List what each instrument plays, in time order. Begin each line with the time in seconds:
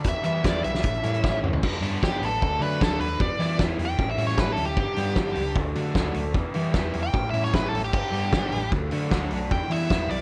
Already playing: string machine D4 B5
0.02 fingered electric bass E2, overdriven electric guitar E3 G3, string machine G4 E5, kick, closed hi-hat
0.07 overdriven electric guitar B3 E4, lead electric guitar E5
0.24 fingered electric bass E3, overdriven electric guitar E3 G3 B3 E4, lead electric guitar E5, closed hi-hat
0.44 fingered electric bass E2, overdriven electric guitar E3 G3 B3 E4, lead electric guitar D5, kick, snare, closed hi-hat
0.63 fingered electric bass B1, overdriven electric guitar G3 B3 E4, lead electric guitar E5, closed hi-hat
0.74 snare
0.83 fingered electric bass A1, overdriven electric guitar A2 E3 G3 C#4 E4, string machine C#4 E5 A5, kick, closed hi-hat
0.94 closed hi-hat
1.03 fingered electric bass A2, overdriven electric guitar E3 G3 C#4 E4, closed hi-hat
1.14 closed hi-hat
1.22 fingered electric bass A1, overdriven electric guitar A2 E3 G3 C#4 E4, kick, snare
1.42 fingered electric bass D2, overdriven electric guitar G3 C#4 E4, mid tom
1.53 floor tom
1.63 fingered electric bass G1, overdriven electric guitar G2 D3 G3 B3 D4, kick, crash
1.80 fingered electric bass G2, overdriven electric guitar D3 B3 D4, open hi-hat
1.85 overdriven electric guitar G3
2.02 fingered electric bass G1, overdriven electric guitar D3 G3 B3 D4, lead electric guitar G4, kick, snare
2.20 fingered electric bass A1, overdriven electric guitar D4, open hi-hat
2.24 overdriven electric guitar G3 B3, lead electric guitar A4
2.41 fingered electric bass D2, overdriven electric guitar D3 F#3 A3 D4, kick
2.60 fingered electric bass D3, overdriven electric guitar D3 F#3 A3 D4, lead electric guitar B4, open hi-hat
2.80 fingered electric bass D2, overdriven electric guitar D3 F#3 A3 D4, lead electric guitar A4, kick, snare
2.99 fingered electric bass D#2, overdriven electric guitar A3 D4, lead electric guitar B4, open hi-hat
3.04 overdriven electric guitar F#3
3.19 fingered electric bass E2, overdriven electric guitar E3 G3 B3 E4, lead electric guitar D5, kick
3.39 fingered electric bass E3, overdriven electric guitar E3 G3 B3 E4, lead electric guitar D5, snare, open hi-hat
3.58 fingered electric bass E2, overdriven electric guitar E3 G3 B3 E4, kick, snare
3.79 fingered electric bass E2, overdriven electric guitar G3 B3 E4, open hi-hat
3.85 lead electric guitar G5
3.97 fingered electric bass A1, overdriven electric guitar A2 E3 G3 C#4 E4, kick
4.11 lead electric guitar E5
4.17 fingered electric bass A2, overdriven electric guitar E3 G3 C#4 E4, open hi-hat
4.27 lead electric guitar C#5, snare
4.36 fingered electric bass A1, overdriven electric guitar A2 E3 G3 C#4 E4, lead electric guitar B4, kick, snare
4.52 lead electric guitar A4
4.57 fingered electric bass D2, overdriven electric guitar G3 C#4 E4, open hi-hat
4.66 lead electric guitar G4
4.77 fingered electric bass G1, overdriven electric guitar G2 D3 G3 B3, lead electric guitar G4, kick
4.81 overdriven electric guitar D4
4.97 fingered electric bass G2, overdriven electric guitar D3 B3 D4, snare, open hi-hat
5.01 overdriven electric guitar G3
5.16 fingered electric bass G1, overdriven electric guitar D3 G3, kick, snare
5.21 overdriven electric guitar B3 D4
5.36 fingered electric bass C#2, overdriven electric guitar B3 D4, open hi-hat
5.41 overdriven electric guitar G3
5.56 fingered electric bass D2, overdriven electric guitar D3 F#3 A3 D4, kick
5.76 fingered electric bass D3, overdriven electric guitar D3 F#3 A3 D4, open hi-hat
5.95 fingered electric bass D2, overdriven electric guitar D3 F#3 A3, kick, snare
6.00 overdriven electric guitar D4
6.15 fingered electric bass D2, overdriven electric guitar F#3 A3 D4, open hi-hat
6.34 fingered electric bass E2, overdriven electric guitar E3 G3 B3 E4, kick
6.53 fingered electric bass E3, overdriven electric guitar E3 G3 B3 E4, open hi-hat
6.72 fingered electric bass E2, overdriven electric guitar E3 G3 B3 E4, kick, snare
6.94 fingered electric bass E2, overdriven electric guitar G3 B3 E4, open hi-hat
7.03 lead electric guitar G5
7.12 fingered electric bass A1, overdriven electric guitar A2 E3 G3 C#4 E4, kick
7.30 fingered electric bass A2, overdriven electric guitar G3 C#4 E4, lead electric guitar E5, open hi-hat
7.35 overdriven electric guitar E3
7.44 lead electric guitar C#5, snare
7.51 fingered electric bass A1, overdriven electric guitar A2 E3 G3 C#4 E4, lead electric guitar B4, kick, snare
7.69 fingered electric bass A1, overdriven electric guitar E4, lead electric guitar A4
7.74 overdriven electric guitar G3 C#4, open hi-hat
7.84 lead electric guitar G4
7.92 fingered electric bass G1, overdriven electric guitar G2 D3 G3 B3 D4, string machine D4 G4 F#5 B5, lead electric guitar G4, kick, crash
8.11 fingered electric bass G2, overdriven electric guitar D3 G3 B3 D4, open hi-hat
8.32 fingered electric bass G1, overdriven electric guitar D3 G3 B3 D4, kick, snare
8.51 fingered electric bass A1, overdriven electric guitar G3 B3 D4, open hi-hat
8.70 fingered electric bass D2, overdriven electric guitar D3 F#3 A3, string machine A4 F#5 B5, kick
8.74 overdriven electric guitar D4
8.91 fingered electric bass D3, overdriven electric guitar D3 F#3 A3 D4, open hi-hat
9.10 fingered electric bass D2, overdriven electric guitar D3 F#3 A3 D4, kick, snare
9.31 fingered electric bass B1, overdriven electric guitar F#3 A3 D4, open hi-hat
9.49 fingered electric bass E2, overdriven electric guitar E3 G3 B3, string machine G4 E5, lead electric guitar G5, kick
9.53 overdriven electric guitar E4
9.70 fingered electric bass E3, overdriven electric guitar E3 G3 B3 E4, lead electric guitar E5, open hi-hat
9.90 fingered electric bass E2, overdriven electric guitar E3 G3 B3 E4, kick, snare
10.09 fingered electric bass B1, overdriven electric guitar G3 B3 E4, lead electric guitar D5, open hi-hat